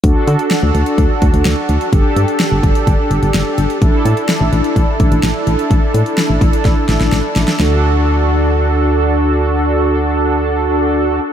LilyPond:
<<
  \new Staff \with { instrumentName = "Analog polysynth" } { \time 4/4 \key d \major \tempo 4 = 127 <d' fis' a'>1 | <d' g' a'>1 | <d' e' a'>1~ | <d' e' a'>1 |
<d' fis' a'>1~ | <d' fis' a'>1 | }
  \new Staff \with { instrumentName = "FM bass" } { \clef bass \time 4/4 \key d \major d,16 r16 d16 r8 d,16 d,16 r16 d,16 r16 d,16 d,16 d,16 r16 d,16 r16 | g,,16 r16 g,16 r8 g,,16 g,,16 r16 g,,16 r16 g,,16 g,,16 g,,16 r16 g,,16 r16 | a,,16 r16 a,16 r8 a,,16 a,,16 r16 a,,16 r16 a,,16 a,,16 a,,16 r16 a,,16 r16 | a,,16 r16 a,16 r8 a,,16 a,,16 r16 a,,16 r16 a,,16 a,,16 a,,16 r16 a,,16 r16 |
d,1~ | d,1 | }
  \new DrumStaff \with { instrumentName = "Drums" } \drummode { \time 4/4 <hh bd>8 hh16 hh16 <hh sn>8 hh16 hh16 <hh bd>8 <hh bd>16 hh16 <hh sn>8 hh16 hh16 | <hh bd>8 hh16 hh16 <hh sn>8 <hh bd>16 hh16 <hh bd>8 hh16 hh16 <hh sn>8 hh16 hh16 | <hh bd>8 hh16 hh16 <hh sn>8 hh16 hh16 <hh bd>8 <hh bd>16 hh16 <hh sn>8 hh16 hh16 | <hh bd>8 hh16 hh16 <hh sn>8 <hh bd>16 hh16 <hh bd sn>8 <hh sn>16 <hh sn>16 <hh sn>8 <hh sn>16 <hh sn>16 |
sn4 r4 r4 r4 | r4 r4 r4 r4 | }
>>